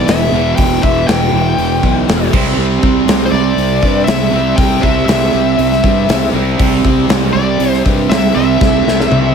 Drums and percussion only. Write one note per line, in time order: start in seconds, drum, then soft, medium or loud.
0.08 snare loud
0.08 open hi-hat medium
0.57 kick loud
0.57 open hi-hat medium
0.83 kick medium
1.08 snare loud
1.08 open hi-hat medium
1.58 open hi-hat medium
1.83 kick medium
2.09 snare loud
2.09 open hi-hat medium
2.33 kick loud
2.33 crash loud
2.83 kick loud
3.08 snare loud
3.08 open hi-hat medium
3.58 open hi-hat medium
3.83 kick medium
4.07 snare loud
4.07 open hi-hat medium
4.58 kick loud
4.58 open hi-hat medium
4.83 kick medium
5.08 snare loud
5.08 open hi-hat medium
5.59 open hi-hat medium
5.72 snare soft
5.84 kick medium
6.09 snare loud
6.09 open hi-hat medium
6.59 kick loud
6.59 open hi-hat medium
6.85 kick medium
7.09 snare loud
7.09 open hi-hat medium
7.60 open hi-hat medium
7.73 snare soft
7.86 kick medium
8.11 snare loud
8.11 open hi-hat medium
8.61 kick loud
8.61 snare medium
8.88 snare medium
9.00 snare medium
9.12 high tom medium